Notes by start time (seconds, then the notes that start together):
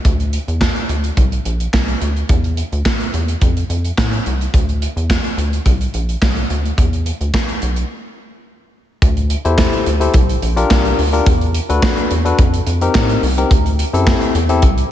0.05 D2, kick, closed hi-hat
0.20 closed hi-hat
0.33 closed hi-hat
0.48 E2, closed hi-hat
0.61 kick, snare, clap
0.76 closed hi-hat
0.89 D2, closed hi-hat
1.04 closed hi-hat
1.17 C2, kick, closed hi-hat
1.32 closed hi-hat
1.45 A#1, closed hi-hat
1.60 closed hi-hat
1.74 C2, kick, snare, clap
1.88 closed hi-hat
2.01 D2, closed hi-hat
2.16 closed hi-hat
2.29 E2, kick, closed hi-hat
2.44 closed hi-hat
2.57 closed hi-hat
2.72 D2, closed hi-hat
2.85 kick, snare, clap
3.00 closed hi-hat
3.14 E2, closed hi-hat
3.28 closed hi-hat
3.41 F2, kick, closed hi-hat
3.57 closed hi-hat
3.69 F2, closed hi-hat
3.85 closed hi-hat
3.98 A2, kick, snare, clap
4.13 closed hi-hat
4.26 C2, closed hi-hat
4.41 closed hi-hat
4.54 D2, kick, closed hi-hat
4.69 closed hi-hat
4.82 closed hi-hat
4.96 E2, closed hi-hat
5.10 kick, snare, clap
5.25 closed hi-hat
5.37 D2, closed hi-hat
5.53 closed hi-hat
5.66 C2, kick, closed hi-hat
5.81 closed hi-hat
5.94 A#1, closed hi-hat
6.09 closed hi-hat
6.22 C2, kick, snare, clap
6.37 closed hi-hat
6.50 D2, closed hi-hat
6.65 closed hi-hat
6.78 E2, kick, closed hi-hat
6.93 closed hi-hat
7.06 closed hi-hat
7.21 D2, closed hi-hat
7.34 kick, snare, clap
7.49 closed hi-hat
7.62 B1, closed hi-hat
7.76 closed hi-hat
9.02 D2, kick, closed hi-hat
9.17 closed hi-hat
9.30 closed hi-hat
9.45 E2 E4 G4 A4 C5, closed hi-hat
9.58 kick, snare, clap
9.73 closed hi-hat
9.86 D2, closed hi-hat
10.00 E4 G4 A4 C5, closed hi-hat
10.14 C2, kick, closed hi-hat
10.29 closed hi-hat
10.42 A#1, closed hi-hat
10.56 D4 F4 G4 A#4, closed hi-hat
10.71 C2, kick, snare, clap
10.85 closed hi-hat
10.99 D2, open hi-hat
11.13 D4 F4 G4 A#4, closed hi-hat
11.26 E2, kick, closed hi-hat
11.41 closed hi-hat
11.54 closed hi-hat
11.69 D2 D4 F#4 A4 B4, closed hi-hat
11.82 kick, snare, clap
11.97 closed hi-hat
12.11 E2, closed hi-hat
12.25 D4 F#4 A4 B4, closed hi-hat
12.39 F2, kick, closed hi-hat
12.54 closed hi-hat
12.66 F2, closed hi-hat
12.81 C4 D#4 G4 A#4, closed hi-hat
12.95 A2, kick, snare, clap
13.09 closed hi-hat
13.22 C2, open hi-hat
13.38 C4 D#4 G4 A#4, closed hi-hat
13.51 D2, kick, closed hi-hat
13.66 closed hi-hat
13.79 closed hi-hat
13.93 F#2 C4 E4 G4 A4, closed hi-hat
14.07 kick, snare, clap
14.22 closed hi-hat
14.34 E2, closed hi-hat
14.49 C4 E4 G4 A4, closed hi-hat
14.62 C2, kick, closed hi-hat
14.78 closed hi-hat